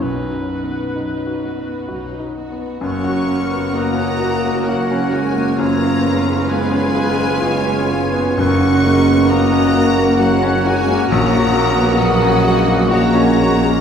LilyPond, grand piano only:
\new Staff \with { instrumentName = "Grand piano" } { \time 3/4 \key b \major \tempo 4 = 66 \tuplet 3/2 { b,,8 fis,8 b8 dis'8 fis'8 b'8 fis'8 dis'8 b8 } | \key fis \major fis,16 fis'16 ais16 b16 ais16 cis'16 fis'16 ais16 fis'16 cis'16 fis'16 ais16 | fis,16 eis'16 b16 cis'16 b16 cis'16 eis'16 b16 eis'16 cis'16 eis'16 b16 | fis,16 fis'16 ais16 b16 ais16 cis'16 fis'16 ais16 fis'16 cis'16 fis'16 ais16 |
ais,,16 fis'16 ais16 b16 ais16 cis'16 fis'16 ais16 fis'16 cis'16 fis'16 ais16 | }